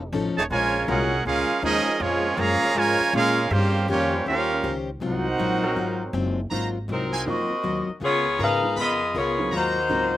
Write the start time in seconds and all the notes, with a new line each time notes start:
Already playing: F1 F3 C#4 D#4 A4
0.12 A1 F3 C#4 D#4 A4
0.25 F1
0.37 D#1 C#3 D#3 A3 D#4 G#4 C#5 A5
0.50 A#1 A#2 C#3 F3 G#3 C#4 F4 A#4 C#5 G#5
0.87 C2 A#2 G#3 C#4 F4 F#4 G#4 A#4 F#5
1.24 C#2 A#2 G#3 C#4 F4 G#4 A#4 F5
1.50 muted upright bass stroke
1.62 D#2 A#2 F3 G#3 C#4 D#4 F4 G#4 A#4 D#5
1.87 muted upright bass stroke
2.00 F2 A#2 F3 G#3 A#3 C#4 F4 G#4 C#5
2.37 F#2 A#2 C#3 F3 G#3 A#3 C#4 F4 G#4 C#5 F5 A#5
2.62 G#3 C#4 F4 A#4
2.75 G#2 A#2 C#3 F3 G#3 C#4 F4 A#4 C#5 G#5
3.00 muted upright bass stroke
3.13 A#2 G#3 C#4 F4 G#4 A#4 F5
3.50 G2 C#3 D#3 G3 A#3 C4 C#4 F4 G4 C5
3.88 F2 D#3 G3 A#3 C#4 F4 G4 C5 C#5
4.11 G3 C#4 F4 C5
4.25 D#2 D#3 A#3 C#4 F4 G4 A#4 C5 F5
4.63 C#2 D#3 C#4 G4 C5
5.00 C2 G#2 F#3 C4 D#4 F4 F#4
5.04 D#4 A#4 C5 F#5
5.38 A#1 G#2 F#3 C4 F4
5.63 F#3 C4 F#4 A#4
5.75 G#1 G#2 F#3 C4 F4
6.13 F#1 G#2 F#3 C4 F4
6.50 G#1 G#2 F#3 A#3 C4 D#4 F4 F#4 C5 F5 A#5
6.88 C2 G#2 F#3 C4 D#4 F4 A#4
7.13 F#4 C5 F5 G#5
7.26 F2 G#2 F#3 A#3 C4 D#4 F4 F#4 A#4 C5 D#5
7.50 muted upright bass stroke
7.63 D#2 G#2 F#3 C4 F4
7.88 muted upright bass stroke
8.00 C#2 C#3 B3 F4 A#4
8.04 F4 G#4 C#5
8.38 G#2 C#3 B3 F4 A#4 B4 D#5 A#5
8.42 D#4 G#4 B4 F5
8.62 G#3 B3 D#4 F4 A#4
8.75 F2 C#3 B3 F4 A#4 B4 D#5 B5
8.80 B3 F4 G#4 D#5
9.14 C#2 C#3 B3 F4 A#4
9.18 B3 F4 G#4 C#5
9.38 F#3 C4 D#4 F4 A#4
9.51 D#2 G#2 F#3 C4 F4 F#4 C5 F5 A#5
9.56 A#3 D#4 F#4 C5
9.89 C#2 G#2 F#3 C4 D#4 F4 A#4